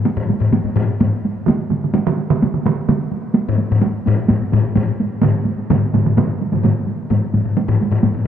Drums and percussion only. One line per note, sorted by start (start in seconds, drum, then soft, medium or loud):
0.05 taiko high medium
0.17 taiko low-mid loud
0.17 taiko high soft
0.29 taiko high medium
0.40 taiko low-mid medium
0.40 taiko high soft
0.52 taiko low-mid medium
0.52 taiko high medium
0.64 taiko low-mid medium
0.64 taiko high soft
0.76 taiko low-mid loud
0.76 taiko high medium
1.00 taiko low-mid medium
1.00 taiko high medium
1.12 taiko high soft
1.25 taiko high medium
1.37 taiko high soft
1.47 taiko mid medium
1.47 taiko high medium
1.60 taiko high soft
1.71 taiko mid medium
1.71 taiko high medium
1.83 taiko mid medium
1.83 taiko high soft
1.94 taiko high medium
2.06 taiko mid loud
2.06 taiko high soft
2.17 taiko high medium
2.30 taiko mid loud
2.30 taiko high soft
2.42 taiko mid medium
2.42 taiko high medium
2.54 taiko mid medium
2.54 taiko high soft
2.66 taiko mid loud
2.66 taiko high medium
2.88 taiko mid loud
2.88 taiko high medium
3.00 taiko high soft
3.12 taiko high soft
3.23 taiko high soft
3.34 taiko high medium
3.47 taiko low-mid loud
3.47 taiko high soft
3.58 taiko high medium
3.70 taiko low-mid loud
3.70 taiko high soft
3.81 taiko high medium
3.94 taiko high soft
4.06 taiko low-mid loud
4.06 taiko high medium
4.18 taiko high soft
4.29 taiko low-mid medium
4.29 taiko high medium
4.40 taiko high soft
4.52 taiko low-mid loud
4.52 taiko high medium
4.76 taiko low-mid loud
4.76 taiko high medium
4.87 taiko high soft
5.00 taiko high medium
5.10 taiko high soft
5.22 taiko low-mid medium
5.22 taiko mid medium
5.22 taiko high medium
5.33 taiko high soft
5.45 taiko high soft
5.58 taiko high soft
5.70 taiko low-mid loud
5.70 taiko mid loud
5.70 taiko high medium
5.82 taiko high soft
5.93 taiko low-mid medium
5.93 taiko mid medium
5.93 taiko high medium
6.05 taiko low-mid medium
6.05 taiko mid medium
6.05 taiko high soft
6.17 taiko low-mid medium
6.17 taiko mid loud
6.17 taiko high medium
6.30 taiko high soft
6.41 taiko high soft
6.52 taiko low-mid medium
6.52 taiko mid medium
6.52 taiko high soft
6.63 taiko low-mid medium
6.63 taiko mid medium
6.63 taiko high medium
6.77 taiko high soft
6.88 taiko high soft
6.99 taiko high soft
7.10 taiko low-mid medium
7.10 taiko high medium
7.23 taiko high soft
7.34 taiko low-mid medium
7.34 taiko high soft
7.45 taiko low-mid medium
7.45 taiko high soft
7.57 taiko high medium
7.68 taiko low-mid loud
7.68 taiko high soft
7.81 taiko high medium
7.91 taiko low-mid loud
7.91 taiko high soft
8.03 taiko low-mid medium
8.03 taiko high medium
8.14 taiko low-mid medium
8.14 taiko high soft